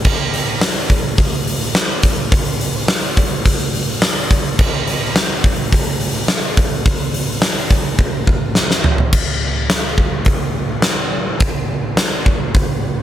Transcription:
0.05 kick loud
0.05 crash medium
0.34 open hi-hat medium
0.61 snare loud
0.61 open hi-hat medium
0.90 kick medium
0.90 open hi-hat medium
1.18 kick medium
1.18 open hi-hat medium
1.48 open hi-hat medium
1.75 snare loud
1.75 open hi-hat medium
2.03 kick medium
2.03 open hi-hat medium
2.32 kick loud
2.32 open hi-hat medium
2.61 open hi-hat medium
2.88 snare loud
2.88 open hi-hat medium
3.17 kick medium
3.17 open hi-hat medium
3.46 kick medium
3.46 open hi-hat medium
3.75 open hi-hat medium
4.02 snare loud
4.02 open hi-hat medium
4.31 kick medium
4.31 open hi-hat medium
4.59 kick loud
4.59 crash loud
4.88 open hi-hat medium
5.16 snare loud
5.16 open hi-hat medium
5.44 kick medium
5.44 open hi-hat medium
5.72 kick medium
5.72 open hi-hat medium
6.00 open hi-hat medium
6.28 snare loud
6.28 open hi-hat medium
6.57 kick medium
6.57 open hi-hat medium
6.86 kick loud
6.86 open hi-hat medium
7.14 open hi-hat medium
7.42 snare loud
7.42 open hi-hat medium
7.70 kick medium
7.70 open hi-hat medium
7.99 kick medium
8.27 kick medium
8.55 snare medium
8.71 snare medium
8.84 floor tom loud
8.98 floor tom medium
9.13 kick loud
9.13 crash medium
9.70 snare loud
9.70 open hi-hat medium
9.98 kick medium
10.25 kick medium
10.25 open hi-hat soft
10.82 snare loud
10.82 open hi-hat medium
11.40 kick loud
11.40 open hi-hat medium
11.97 snare loud
11.97 open hi-hat medium
12.26 kick medium
12.54 kick loud
12.54 open hi-hat soft

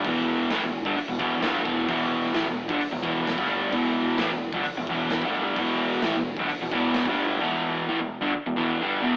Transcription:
0.05 0.48 E1 loud
0.05 0.51 E2 medium
0.05 0.51 B2 medium
0.05 0.51 E3 loud
0.05 kick loud
0.05 open hi-hat medium
0.50 0.61 A1 medium
0.50 0.62 A2 medium
0.50 0.63 E3 loud
0.50 snare loud
0.50 open hi-hat medium
0.62 0.84 E1 medium
0.62 0.82 E2 medium
0.62 0.82 B2 medium
0.85 0.96 G1 medium
0.85 0.97 G2 medium
0.85 0.97 D3 medium
0.85 kick loud
0.97 muted overdriven electric guitar stroke medium
0.97 muted picked electric bass stroke soft
0.97 open hi-hat medium
1.08 1.19 E1 medium
1.08 1.18 E2 medium
1.08 1.19 B2 medium
1.19 1.41 E1 medium
1.19 1.41 E2 medium
1.19 1.42 B2 medium
1.19 1.42 E3 loud
1.19 kick loud
1.41 1.65 G1 medium
1.41 1.64 G2 medium
1.41 1.64 D3 medium
1.41 1.64 G3 loud
1.41 snare loud
1.41 open hi-hat medium
1.64 1.87 E1 medium
1.64 1.87 E2 medium
1.64 1.88 B2 loud
1.64 1.88 E3 loud
1.64 kick loud
1.88 2.32 E1 medium
1.88 2.34 E2 medium
1.88 2.34 B2 loud
1.88 2.35 E3 medium
1.88 kick loud
1.88 open hi-hat medium
2.24 snare soft
2.34 2.46 A1 medium
2.34 2.46 A2 loud
2.34 2.46 E3 medium
2.34 snare loud
2.34 open hi-hat medium
2.46 2.69 E1 medium
2.46 2.65 E2 medium
2.46 2.66 B2 medium
2.68 2.79 G1 loud
2.68 2.80 G2 medium
2.68 2.81 D3 medium
2.68 kick loud
2.80 muted picked electric bass stroke soft
2.80 muted overdriven electric guitar stroke medium
2.80 open hi-hat medium
2.92 3.03 E1 medium
2.92 3.01 E2 medium
2.92 3.01 B2 medium
3.02 3.36 E1 loud
3.02 3.37 E2 medium
3.02 3.37 B2 medium
3.02 3.37 E3 medium
3.02 kick medium
3.27 snare loud
3.27 open hi-hat medium
3.37 3.70 G1 medium
3.37 3.72 G2 medium
3.37 3.72 D3 loud
3.37 3.72 G3 loud
3.37 kick loud
3.72 4.16 E1 loud
3.72 4.18 E2 medium
3.72 4.18 B2 loud
3.72 4.18 E3 loud
3.72 kick loud
3.72 open hi-hat medium
4.18 4.29 A1 loud
4.18 4.30 A2 loud
4.18 4.30 E3 loud
4.18 snare loud
4.18 open hi-hat medium
4.30 4.51 E1 medium
4.30 4.49 E2 medium
4.30 4.49 B2 medium
4.53 4.64 G1 medium
4.53 4.65 G2 medium
4.53 4.65 D3 loud
4.53 kick loud
4.64 muted picked electric bass stroke soft
4.64 muted overdriven electric guitar stroke medium
4.64 open hi-hat medium
4.75 4.87 E1 medium
4.75 4.88 E2 medium
4.75 4.88 B2 medium
4.87 5.20 E1 medium
4.87 5.22 E2 medium
4.87 5.23 B2 loud
4.87 5.23 E3 loud
4.87 kick medium
5.10 snare loud
5.10 open hi-hat medium
5.22 5.54 G1 medium
5.22 5.57 G2 medium
5.22 5.57 D3 medium
5.22 5.58 G3 loud
5.22 kick medium
5.56 5.99 E1 medium
5.56 6.02 E2 medium
5.56 6.03 B2 loud
5.56 6.03 E3 medium
5.56 kick loud
5.56 open hi-hat medium
5.92 snare soft
6.02 6.13 A1 medium
6.02 6.14 A2 medium
6.02 6.14 E3 loud
6.02 snare loud
6.02 open hi-hat medium
6.15 6.36 E1 medium
6.15 6.33 E2 medium
6.15 6.34 B2 medium
6.37 6.48 G1 medium
6.37 6.49 G2 medium
6.37 kick loud
6.41 6.50 D3 loud
6.49 muted overdriven electric guitar stroke medium
6.49 muted picked electric bass stroke soft
6.49 open hi-hat medium
6.61 6.71 E1 medium
6.61 6.71 E2 medium
6.61 6.71 B2 medium
6.71 7.04 E1 loud
6.71 7.05 E2 medium
6.71 7.06 B2 medium
6.71 7.06 E3 loud
6.71 kick loud
6.94 snare loud
6.94 open hi-hat medium
7.06 7.38 G1 medium
7.06 7.40 G2 medium
7.06 7.40 D3 loud
7.06 7.41 G3 loud
7.06 kick loud
7.41 7.86 E2 medium
7.41 7.86 B2 loud
7.41 7.86 E3 medium
7.88 7.98 A2 medium
7.88 7.98 E3 loud
7.99 8.17 E2 medium
7.99 8.17 B2 medium
8.21 8.31 G2 medium
8.21 8.32 D3 loud
8.35 muted overdriven electric guitar stroke medium
8.46 8.55 E2 medium
8.46 8.56 B2 medium
8.56 8.78 E2 medium
8.56 8.78 B2 medium
8.56 8.78 E3 loud
8.80 9.01 G2 medium
8.80 9.02 D3 medium
8.80 9.02 G3 loud
9.01 9.17 E2 medium
9.01 9.17 B2 loud
9.01 9.17 E3 loud

